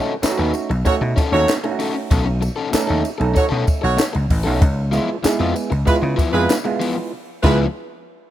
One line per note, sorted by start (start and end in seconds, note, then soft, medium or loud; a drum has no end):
0.00 0.15 A3 medium
0.00 0.11 C#4 medium
0.00 0.15 C#4 medium
0.00 0.12 D#4 medium
0.00 0.16 D#4 medium
0.00 0.16 F#4 loud
0.00 0.12 A4 medium
0.22 0.70 A3 loud
0.22 0.71 C#4 loud
0.22 0.71 D#4 loud
0.22 0.30 F4 medium
0.22 muted overdriven electric guitar stroke soft
0.22 muted slap bass stroke soft
0.22 snare loud
0.22 clap medium
0.22 ride medium
0.22 tambourine loud
0.31 0.75 F#4 loud
0.38 0.51 D#2 loud
0.38 0.52 C#4 medium
0.38 0.53 D#4 medium
0.38 0.54 B4 medium
0.53 muted overdriven electric guitar stroke soft
0.53 ride medium
0.53 tambourine medium
0.70 0.82 B1 medium
0.70 muted overdriven electric guitar stroke soft
0.70 ride soft
0.85 1.21 A3 loud
0.85 1.21 C#4 loud
0.85 1.21 D#4 medium
0.85 0.96 F#4 medium
0.85 1.22 F#4 loud
0.85 0.96 A4 loud
0.85 0.96 C#5 loud
0.85 muted overdriven electric guitar stroke soft
0.85 kick medium
0.85 ride medium
0.85 tambourine medium
1.01 1.13 B2 medium
1.01 muted overdriven electric guitar stroke medium
1.16 1.32 C#4 medium
1.16 1.33 D#4 medium
1.16 1.32 A4 loud
1.16 kick loud
1.16 ride medium
1.16 tambourine medium
1.32 1.44 D#2 medium
1.32 1.56 A3 loud
1.32 1.56 C#4 medium
1.32 1.57 D#4 medium
1.32 1.53 F#4 medium
1.32 1.57 F#4 loud
1.32 1.53 A4 loud
1.32 1.53 C#5 loud
1.32 muted overdriven electric guitar stroke soft
1.49 snare loud
1.49 clap loud
1.49 ride medium
1.49 tambourine loud
1.63 2.47 A3 medium
1.63 2.47 C#4 medium
1.63 2.48 D#4 medium
1.63 1.71 F4 medium
1.63 muted overdriven electric guitar stroke soft
1.63 ride soft
1.71 2.51 F#4 loud
1.79 1.95 C#4 medium
1.79 1.95 D#4 medium
1.79 1.93 A4 loud
1.79 open hi-hat medium
1.79 ride medium
1.79 tambourine soft
1.94 muted overdriven electric guitar stroke soft
2.11 2.47 B1 loud
2.11 2.26 C#4 medium
2.11 2.26 D#4 medium
2.11 2.25 A4 medium
2.11 kick loud
2.11 hi-hat pedal medium
2.11 ride medium
2.11 tambourine soft
2.26 muted overdriven electric guitar stroke soft
2.41 muted overdriven electric guitar stroke medium
2.41 ride medium
2.41 tambourine medium
2.56 2.70 C#4 medium
2.56 2.70 D#4 medium
2.56 2.69 A4 medium
2.72 3.09 A3 loud
2.72 3.09 C#4 loud
2.72 3.09 D#4 loud
2.72 3.10 A4 loud
2.72 muted overdriven electric guitar stroke soft
2.72 muted slap bass stroke medium
2.72 snare loud
2.72 clap loud
2.72 ride medium
2.72 tambourine loud
2.87 3.02 D#2 medium
2.87 3.02 C#4 medium
2.87 3.03 D#4 medium
2.87 3.03 A4 loud
3.03 muted overdriven electric guitar stroke soft
3.03 ride medium
3.03 tambourine medium
3.18 3.32 B1 loud
3.18 4.15 A3 medium
3.18 4.16 C#4 medium
3.18 4.16 D#4 loud
3.18 4.16 A4 loud
3.18 muted overdriven electric guitar stroke soft
3.18 ride medium
3.34 3.46 F#4 medium
3.34 3.46 A4 medium
3.34 3.46 C#5 loud
3.34 muted overdriven electric guitar stroke soft
3.34 muted slap bass stroke soft
3.34 kick loud
3.34 ride medium
3.34 tambourine medium
3.49 3.64 B2 loud
3.49 3.65 C#4 medium
3.49 3.65 D#4 loud
3.49 3.66 A4 loud
3.66 muted overdriven electric guitar stroke soft
3.66 kick loud
3.66 ride medium
3.66 tambourine medium
3.82 3.96 B1 loud
3.82 4.03 F#4 loud
3.82 4.03 A4 loud
3.82 4.03 C#5 loud
3.82 muted overdriven electric guitar stroke medium
3.97 muted overdriven electric guitar stroke soft
3.97 snare loud
3.97 clap loud
3.97 ride medium
3.97 tambourine loud
4.13 4.27 C#2 medium
4.13 muted overdriven electric guitar stroke soft
4.13 ride soft
4.30 4.47 A1 medium
4.30 kick medium
4.30 open hi-hat medium
4.30 ride medium
4.30 tambourine soft
4.44 4.58 B1 medium
4.44 4.61 A3 medium
4.44 4.61 C#4 medium
4.44 4.61 C#4 loud
4.44 4.61 D#4 medium
4.44 4.62 D#4 medium
4.44 4.62 F#4 loud
4.44 4.60 A4 medium
4.62 4.98 C#2 loud
4.62 kick loud
4.62 hi-hat pedal medium
4.62 ride medium
4.92 5.08 F3 loud
4.92 5.16 G#3 loud
4.92 5.16 B3 medium
4.92 5.08 B3 loud
4.92 5.17 E4 medium
4.92 5.09 E4 loud
4.92 5.17 F4 loud
4.92 ride medium
4.92 tambourine medium
5.23 5.71 G#3 loud
5.23 5.72 B3 loud
5.23 5.72 E4 loud
5.23 5.72 G#4 loud
5.23 muted overdriven electric guitar stroke soft
5.23 muted slap bass stroke medium
5.23 snare loud
5.23 clap medium
5.23 ride medium
5.23 tambourine loud
5.40 5.52 F2 medium
5.40 5.54 F3 medium
5.40 5.54 B3 medium
5.40 5.55 F4 medium
5.55 muted overdriven electric guitar stroke soft
5.55 ride medium
5.55 tambourine medium
5.70 5.83 C#2 medium
5.70 muted overdriven electric guitar stroke medium
5.70 ride medium
5.86 6.22 G#3 loud
5.86 6.22 B3 medium
5.86 6.23 E4 medium
5.86 5.97 F4 medium
5.86 6.23 F4 loud
5.86 5.97 G#4 medium
5.86 5.97 B4 loud
5.86 muted overdriven electric guitar stroke soft
5.86 muted slap bass stroke soft
5.86 kick loud
5.86 ride medium
5.86 tambourine medium
6.02 6.15 C#3 loud
6.02 muted overdriven electric guitar stroke soft
6.17 6.33 F3 medium
6.17 6.33 B3 medium
6.17 6.31 E4 loud
6.17 kick loud
6.17 ride medium
6.17 tambourine medium
6.32 6.46 F2 loud
6.32 6.57 G#3 loud
6.32 6.58 B3 medium
6.32 6.58 E4 medium
6.32 6.53 F4 loud
6.32 6.58 F4 loud
6.32 6.53 G#4 loud
6.32 6.53 B4 loud
6.32 muted overdriven electric guitar stroke soft
6.50 snare loud
6.50 clap medium
6.50 ride medium
6.50 tambourine loud
6.64 7.12 G#3 loud
6.64 7.12 B3 medium
6.64 7.12 E4 medium
6.64 7.13 F4 loud
6.64 muted overdriven electric guitar stroke medium
6.64 ride soft
6.80 6.96 F3 loud
6.80 6.96 B3 medium
6.80 6.95 E4 loud
6.80 open hi-hat medium
6.80 ride medium
6.80 tambourine soft
6.96 muted overdriven electric guitar stroke soft
7.43 7.65 C#2 loud
7.43 7.66 F3 loud
7.43 7.65 G#3 loud
7.43 7.65 B3 loud
7.43 7.65 E4 loud
7.43 7.59 F4 loud
7.43 7.66 F4 loud
7.43 7.59 G#4 medium
7.43 7.59 B4 loud
7.43 kick loud
7.43 snare medium
7.43 crash medium